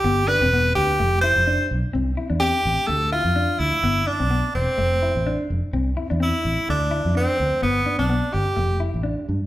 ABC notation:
X:1
M:4/4
L:1/16
Q:"Swing 16ths" 1/4=127
K:C
V:1 name="Tenor saxophone"
G2 B4 G4 c4 z2 | z4 G4 A2 F4 E2- | E2 D4 C8 z2 | z4 E4 D4 C4 |
B,3 D3 G4 z6 |]
V:2 name="Clean electric guitar"
B,2 D C B,2 z2 A,2 E2 D2 z2 | C2 E D C2 z2 A,2 E2 D2 z2 | B,2 D C B,2 z2 A,2 E2 D2 z2 | C2 E D C2 z2 A,2 E2 D2 z2 |
B,2 D C B,2 z2 A,2 E2 D2 z2 |]
V:3 name="Fingered electric bass" clef=bass
G,,,3 E,,,3 D,,2 F,,,3 F,,,2 z B,,, z | C,,2 z E,,2 z A,,, z D,,3 F,,2 z D,, z | G,,,2 z B,,,2 z E,,, z F,,,3 A,,,2 z F,,, z | C,,2 z E,,2 z A,,, z D,,3 F,,2 z D,, z |
G,,,2 z B,,,2 z G,,, z F,,,3 A,,,2 z G,, z |]